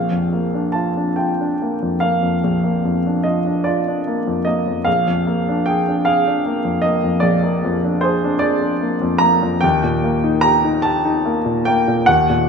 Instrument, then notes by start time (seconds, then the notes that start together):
grand piano
Already playing: A#1 F5
0.12 F2
0.33 A#3
0.54 D4
0.72 F4 A5
0.97 D4
1.16 F4 G5
1.41 D4
1.62 A#3
1.83 F2
2.00 A#3 F5
2.23 F2
2.44 A#1
2.64 A#3
2.85 F2
3.06 D4
3.24 F4 D#5
3.46 D4
3.64 F4 D5
3.88 D4
4.07 A#3
4.27 F2
4.45 A#3 D#5
4.67 F2
4.85 A#1 F5
5.07 F2
5.27 A#3
5.48 D4
5.66 G#4 G5
5.88 D4
6.05 G#4 F5
6.27 D4
6.46 A#3
6.65 F2
6.82 A#3 D#5
7.04 F2
7.20 A#1 D5
7.43 A#3
7.65 F2
7.84 D4
8.01 G#4 C5
8.24 D4
8.39 G#4 D5
8.61 D4
8.82 A#3
9.02 F2
9.18 A#3 A#5
9.43 F2
9.61 D#2 G5
9.84 A#2
10.04 A#3
10.24 D#4
10.41 G4 A#5
10.64 D#4
10.82 G4 A5
11.05 D#4
11.26 A#3
11.46 A#2
11.65 A#3 G5
11.88 A#2
12.06 D#2 F#5
12.30 A#2